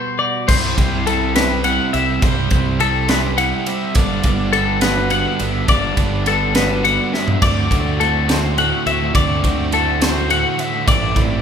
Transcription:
Already playing: B2 G3 B3 F#4 C5
0.19 F#4 D5
0.48 C2 C3 G3 C4 E4 C5, kick, crash
0.77 C2 C3 G3 C4 E4, kick, ride
1.06 C3 G3 C4 E4 A4, ride
1.35 C3 G3 C4 E4 G4 B4, snare, ride
1.64 C3 G3 C4 E4 F#5, ride
1.93 C2 C3 G3 C4 E4 E5, ride
2.22 C2 C3 G3 C4 E4 C5, kick, ride
2.50 C2 C3 G3 C4 E4, kick, ride
2.79 C3 G3 C4 E4 A4, ride
3.09 C3 G3 C4 E4 G4 B4, snare, ride
3.38 C3 G3 C4 E4 F#5, ride
3.66 C3 G3 C4 E4 E5, ride
3.95 G1 G2 D3 G3 B3 D4 D5, kick, ride
4.23 G1 D3 G3 B3 D4, kick, ride
4.53 D3 G3 B3 D4 A4, ride
4.81 D3 G3 B3 D4 F#4 B4, snare, ride
5.10 D3 G3 B3 D4 F#5, ride
5.39 G1 D3 G3 B3 D4 E5, ride
5.68 G1 G2 D3 G3 B3 D4 D5, kick, ride
5.97 G1 D3 G3 B3 D4, kick, ride
6.26 D3 G3 B3 D4 A4, ride
6.55 D3 G3 B3 D4 F#4 B4, snare, ride
6.84 D3 G3 B3 D4 F#5, ride
7.13 D3 G3 B3 D4 E5, snare
7.28 floor tom
7.42 D2 D3 A3 C4 F#4 D5, kick, ride, crash
7.70 D2 D3 A3 C4 F#4, kick, ride
7.99 D3 A3 C4 E4 F#4 A4, ride
8.28 D3 A3 C4 F#4 C5, snare, ride
8.58 A2 D3 A3 C4 E4 F#4 F#5, ride
8.86 D2 D3 A3 C4 F#4 E5, ride
9.14 D2 D3 A3 C4 F#4 D5, kick, ride
9.43 D2 D3 A3 C4 F#4, kick, ride
9.71 D3 A3 C4 E4 F#4 A4, ride
10.01 D3 A3 C4 F#4 C5, snare, ride
10.29 A2 D3 A3 C4 E4 F#4 F#5, ride
10.59 D3 A3 C4 F#4 E5, ride
10.87 A1 A2 E3 A3 C4 E4 D5, kick, ride
11.16 A1 E3 A3 C4 E4, kick, ride

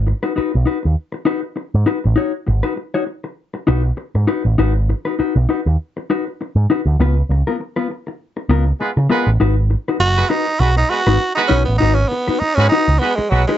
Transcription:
Already playing: G#1
0.07 muted clean electric guitar stroke
0.23 D#4 F#4 B4
0.36 D#4 F#4 B4, muted picked electric bass stroke
0.54 B1, muted clean electric guitar stroke
0.66 D#4 F#4 B4
0.83 D#2, muted clean electric guitar stroke
1.12 muted clean electric guitar stroke
1.25 D#4 F#4 B4
1.42 muted clean electric guitar stroke
1.56 muted clean electric guitar stroke
1.74 G#2
1.86 D#4 F#4 B4
2.04 A1, muted clean electric guitar stroke
2.16 D#4 F#4 C#5
2.47 G#1, muted clean electric guitar stroke
2.63 D#4 F#4 B4
2.76 muted clean electric guitar stroke
2.94 D#4 F#4 C#5
3.07 muted clean electric guitar stroke
3.24 muted clean electric guitar stroke
3.54 muted clean electric guitar stroke
3.67 B1 D#4 F#4 B4
3.84 muted clean electric guitar stroke
3.97 muted clean electric guitar stroke
4.15 G#2, muted clean electric guitar stroke
4.27 D#4 F#4 B4
4.45 A1
4.58 G#1 D#4 F#4 B4
4.89 muted clean electric guitar stroke
5.05 D#4 F#4 B4
5.19 D#4 F#4 B4, muted picked electric bass stroke
5.36 B1
5.49 D#4 F#4 B4
5.66 D#2, muted clean electric guitar stroke
5.97 muted clean electric guitar stroke
6.10 D#4 F#4 B4
6.27 muted clean electric guitar stroke
6.41 muted clean electric guitar stroke
6.56 G#2
6.70 D#4 F#4 B4
6.86 D2, muted clean electric guitar stroke
6.99 C#2 B3 F4 B4
7.29 C#2, muted clean electric guitar stroke
7.47 B3 F4 A#4
7.60 muted clean electric guitar stroke
7.76 B3 F4 B4
7.90 muted clean electric guitar stroke
8.07 muted clean electric guitar stroke
8.37 muted clean electric guitar stroke
8.49 C#2 B3 F4 A#4
8.67 muted clean electric guitar stroke
8.80 G#3 B3 F4 B4, muted clean electric guitar stroke
8.97 C#3, muted clean electric guitar stroke
9.10 G#3 B3 F4 A#4 B4
9.26 A1, muted clean electric guitar stroke
9.40 G#1 D#4 F#4 B4
9.70 muted clean electric guitar stroke
9.88 D#4 F#4 B4
10.00 F#1 F#4, muted clean electric guitar stroke
10.16 G#3 B3 F#4 B4, muted clean electric guitar stroke
10.29 D#4 F#4 B4
10.47 muted clean electric guitar stroke
10.60 B1 G#3 B3 F#4 B4, muted clean electric guitar stroke
10.77 D#4, muted clean electric guitar stroke
10.89 G#3 B3 F#4 B4
11.07 G#1 D#4 F#4 B4
11.20 muted clean electric guitar stroke
11.35 G#3 B3 D#4 F#4 B4, muted clean electric guitar stroke
11.48 B1 C#4 D#4 F#4 B4
11.65 A1 B3, muted clean electric guitar stroke
11.78 G#1 D#4 F#4
11.82 B4
11.94 C#4
12.08 B3, muted clean electric guitar stroke
12.28 D#4 F#4 B4, muted picked electric bass stroke
12.39 D#4, muted picked electric bass stroke, muted clean electric guitar stroke
12.55 G#2 G#3 B3 C#4 F#4 B4, muted clean electric guitar stroke
12.69 D#4
12.73 F#4 B4
12.88 C#2
12.99 G#3 B3 F#4 B4, muted clean electric guitar stroke
13.16 G#3, muted clean electric guitar stroke, muted picked electric bass stroke
13.29 B1 F#3 G#3 B3 F#4 B4
13.47 G#3 D#4 F#4 B4

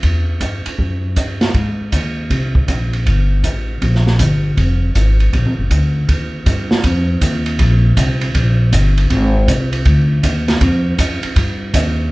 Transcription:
0.03 E2, kick, ride
0.40 G2, kick, hi-hat pedal, ride
0.66 muted upright bass stroke, ride
0.79 F#2, kick
1.16 G2, kick, hi-hat pedal, ride
1.41 snare, ride
1.54 G#2, kick, ride
1.92 D#2, kick, hi-hat pedal, ride
2.30 C2, kick, ride
2.55 kick
2.68 A#1, kick, hi-hat pedal, ride
2.93 ride
3.06 G1, kick, ride
3.44 A1, kick, hi-hat pedal, ride
3.82 A#1, kick, ride
3.95 snare
4.07 snare
4.19 G1, kick, hi-hat pedal, ride
4.57 F1, kick, ride
4.95 G#1, kick, hi-hat pedal, ride
5.20 ride
5.33 A#1, kick, ride
5.46 G#1
5.58 F#1
5.71 D2, kick, hi-hat pedal, ride
6.08 D#2, kick, ride
6.46 G2, kick, hi-hat pedal, ride
6.71 snare
6.84 F2, kick, ride
7.21 D#2, kick, hi-hat pedal, ride
7.46 ride
7.59 A#1, kick, ride
7.97 C2, kick, hi-hat pedal, ride
8.21 ride
8.34 A#1, kick, ride
8.72 G1, kick, hi-hat pedal, ride
8.97 ride
9.10 G#1, kick, ride
9.48 C2, kick, hi-hat pedal, ride
9.73 ride
9.85 D2, kick, ride
10.23 D#2, kick, hi-hat pedal, ride
10.48 snare, ride
10.61 F2, kick, ride
10.98 F#2, kick, hi-hat pedal, ride
11.23 muted upright bass stroke, ride
11.36 G2, kick, ride
11.73 D#2, kick, hi-hat pedal, ride

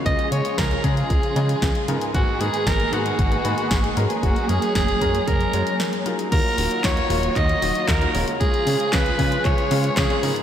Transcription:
Already playing: C#3 G#3 C#4 F4 C#5
0.06 C#2 C#3 F3 G#3 F4 G#4 D#5, kick, closed hi-hat
0.19 closed hi-hat
0.32 C#3 G#3 C#4 F4 C#5, closed hi-hat
0.45 closed hi-hat
0.58 C#2 A#4, kick, snare, closed hi-hat
0.71 closed hi-hat
0.84 C#3 G#3 C#4 F4 G#4 C#5, kick, closed hi-hat
0.97 closed hi-hat
1.10 C#2, kick, closed hi-hat
1.23 closed hi-hat
1.36 C#3 G#3 C#4 F4 D#5, closed hi-hat
1.49 closed hi-hat
1.62 C#2, kick, snare, closed hi-hat
1.75 closed hi-hat
1.88 G#2 C#3 G#3 B3 D#4 A#4, closed hi-hat
2.01 closed hi-hat
2.14 G#1 D#3 A#3 B3 F#4, kick, closed hi-hat
2.40 G#2 G#3 B3 D#4 G#4 A#4, closed hi-hat
2.54 closed hi-hat
2.67 G#1 A#4, kick, snare, closed hi-hat
2.80 closed hi-hat
2.93 G#2 G#3 B3 D#4 F#4 A#4, closed hi-hat
3.06 closed hi-hat
3.19 G#1, kick, closed hi-hat
3.32 closed hi-hat
3.45 G#2 G#3 B3 D#4 B4, closed hi-hat
3.58 closed hi-hat
3.71 G#1, kick, snare, closed hi-hat
3.84 closed hi-hat
3.97 G#2 G#3 C#4 F#4 A#4, closed hi-hat
4.10 closed hi-hat
4.23 F#1 F#3 C#4 F#4, kick, closed hi-hat
4.36 closed hi-hat
4.49 F#2 G#3 C#4 F#4 G#4 A#4, closed hi-hat
4.62 closed hi-hat
4.75 F#1 G#4, kick, snare, closed hi-hat
4.88 closed hi-hat
5.01 F#2 G#3 C#4 F#4 A#4, kick, closed hi-hat
5.15 closed hi-hat
5.27 F#1 A#4, kick, closed hi-hat
5.41 closed hi-hat
5.53 F#2 G#3 C#4 F#4 C#5, closed hi-hat
5.67 closed hi-hat
5.80 snare, closed hi-hat
5.93 closed hi-hat
6.06 F#3 D#4 F4 A#4, closed hi-hat
6.19 closed hi-hat
6.32 D#2 D#3 F#3 A#3 F4 F#4 A#4, kick, closed hi-hat, crash
6.58 D#1 F#3 D#4 F4 A#4, open hi-hat
6.71 closed hi-hat
6.84 D#2 C#5, kick, snare, clap, closed hi-hat
6.97 closed hi-hat
7.10 D#1 F#3 D#4 F4 A#4, open hi-hat
7.23 closed hi-hat
7.36 D#2 D#5, kick, clap, closed hi-hat
7.49 closed hi-hat
7.62 D#1 F#3 D#4 F4 D#5, open hi-hat
7.75 closed hi-hat
7.88 D#2 A#4, kick, snare, clap, closed hi-hat
8.01 F#3 D#4 F4 A#4, closed hi-hat
8.14 D#1 C#3 G#3 C#4 F4 C#5, open hi-hat
8.28 closed hi-hat
8.40 C#2 C#3 F3 G#3 F4 G#4, kick, closed hi-hat
8.54 closed hi-hat
8.66 C#3 G#3 C#4 F4 C#5, open hi-hat
8.80 closed hi-hat
8.93 C#2 B4, kick, snare, clap, closed hi-hat
9.06 closed hi-hat
9.19 C#3 G#3 C#4 F4 C#5, kick, open hi-hat
9.32 closed hi-hat
9.44 C#2 C#5, kick, clap, closed hi-hat
9.58 closed hi-hat
9.71 C#3 G#3 C#4 F4 F5, open hi-hat
9.84 closed hi-hat
9.97 C#2 G#4, kick, snare, clap, closed hi-hat
10.10 C#3 G#3 C#4 F4 C#5, closed hi-hat
10.23 G#2 C#3 G#3 B3 D#4 A#4, open hi-hat
10.36 closed hi-hat

